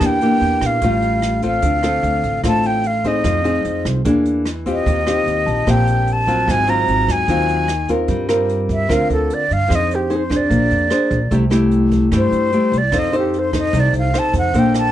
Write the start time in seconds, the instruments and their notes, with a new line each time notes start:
Already playing: nylon-string guitar A#3 D4 G4
0.01 upright bass E2, nylon-string guitar E3, kick, cross-stick, closed hi-hat
0.06 flute G5
0.21 nylon-string guitar A#3 D4 G4, closed hi-hat
0.41 upright bass E2, closed hi-hat
0.61 upright bass A#2, kick, cross-stick, closed hi-hat
0.66 flute F5
0.81 upright bass A1, nylon-string guitar A2 G3 C#4 F4, kick, closed hi-hat
1.02 closed hi-hat
1.22 cross-stick, closed hi-hat
1.42 nylon-string guitar C4 F4 A4, kick, closed hi-hat
1.46 flute F5
1.62 upright bass D2, nylon-string guitar D3, kick, closed hi-hat
1.83 nylon-string guitar C4 F4 A4, cross-stick, closed hi-hat
2.03 upright bass D2, closed hi-hat
2.23 upright bass A1, kick, closed hi-hat
2.44 upright bass A1, nylon-string guitar A2 C4 F4 A4, flute A5, kick, cross-stick, closed hi-hat
2.63 flute G5, closed hi-hat
2.84 flute F5, closed hi-hat
3.04 nylon-string guitar C4 D#4 G#4, flute D#5, kick, closed hi-hat
3.24 upright bass F2, nylon-string guitar F3, kick, cross-stick, closed hi-hat
3.44 nylon-string guitar C4 D#4 G#4, closed hi-hat
3.65 upright bass F2, closed hi-hat
3.85 upright bass C2, kick, cross-stick, closed hi-hat
4.05 upright bass E2, nylon-string guitar E3 A#3 D4 G#4, kick, closed hi-hat
4.25 closed hi-hat
4.46 cross-stick, closed hi-hat
4.66 nylon-string guitar C4 F4 G4, kick, closed hi-hat
4.72 flute D#5
4.86 upright bass D#2, nylon-string guitar D#3, kick, closed hi-hat
5.06 nylon-string guitar C4 F4 G4, cross-stick, closed hi-hat
5.26 upright bass D#2, closed hi-hat
5.46 upright bass A#1, tine electric piano A5, kick, closed hi-hat
5.67 upright bass A#1, nylon-string guitar A#2 C4 F4 G4, flute G5, kick, cross-stick, closed hi-hat
5.87 closed hi-hat
6.07 closed hi-hat
6.13 flute A5
6.27 nylon-string guitar F#3 C4 F4, kick, closed hi-hat
6.48 upright bass G#1, nylon-string guitar G#2, flute G#5, kick, cross-stick, closed hi-hat
6.67 nylon-string guitar F#3 C4 F4, flute A#5, closed hi-hat
6.88 upright bass G#1, closed hi-hat
7.08 upright bass D#2, kick, cross-stick, closed hi-hat
7.12 flute G#5
7.28 upright bass D#2, nylon-string guitar D#3 F#3 C4 F4, kick, closed hi-hat
7.49 closed hi-hat
7.68 cross-stick, closed hi-hat
7.88 nylon-string guitar C4 F4 A#4, kick, closed hi-hat
8.08 upright bass G2, nylon-string guitar G3, kick, closed hi-hat
8.29 nylon-string guitar C4 F4 A#4, cross-stick, closed hi-hat
8.49 closed hi-hat
8.69 flute E5, kick, closed hi-hat
8.89 upright bass D2, nylon-string guitar D3 C4 F4 A#4, kick, cross-stick, closed hi-hat
8.93 flute F5
9.10 upright bass D2, flute A4, closed hi-hat
9.30 flute D5, closed hi-hat
9.51 upright bass G2, flute F5, closed hi-hat
9.68 upright bass F2, nylon-string guitar F3 D#4 G#4 C5, kick, cross-stick, closed hi-hat
9.75 flute D#5
9.91 closed hi-hat
9.95 flute G4
10.10 nylon-string guitar D#4 G#4 C5, closed hi-hat
10.16 flute C5
10.30 nylon-string guitar D4 G#4 C5, kick, cross-stick, closed hi-hat
10.36 flute D5
10.49 upright bass A#1, nylon-string guitar A#3, kick, closed hi-hat
10.71 upright bass F2, closed hi-hat
10.90 nylon-string guitar D4 G#4 C5, cross-stick, closed hi-hat
11.11 upright bass A#1, kick, closed hi-hat
11.31 upright bass C2, nylon-string guitar C3 A3 E4 G4, kick, closed hi-hat
11.50 nylon-string guitar A3 E4 G4, cross-stick, closed hi-hat
11.71 closed hi-hat
11.91 kick, closed hi-hat
12.12 upright bass G2, nylon-string guitar G3 A3 E4 G4, kick, cross-stick, closed hi-hat
12.17 flute C5
12.32 upright bass G2, closed hi-hat
12.53 nylon-string guitar A3 E4 G4, closed hi-hat
12.72 upright bass C2, closed hi-hat
12.78 flute D5
12.92 upright bass F2, nylon-string guitar F3 D#4 A4 C5, kick, cross-stick, closed hi-hat
12.98 flute D#5
13.13 nylon-string guitar D#4 A4 C5, closed hi-hat
13.19 flute G4
13.34 closed hi-hat
13.39 flute C5
13.53 nylon-string guitar D#4 A4 C5, kick, cross-stick, closed hi-hat
13.58 flute D#5
13.73 upright bass C2, nylon-string guitar C3, kick, closed hi-hat
13.80 flute D5
13.93 upright bass C2, closed hi-hat
13.98 flute F5
14.13 nylon-string guitar D#4 A4 C5, cross-stick, closed hi-hat
14.19 flute A5
14.33 upright bass F2, kick, closed hi-hat
14.38 flute F#5
14.54 upright bass A#1, nylon-string guitar A#3 D4 A4 C5, kick, closed hi-hat
14.59 flute G5
14.74 tine electric piano G5, flute A5, cross-stick, closed hi-hat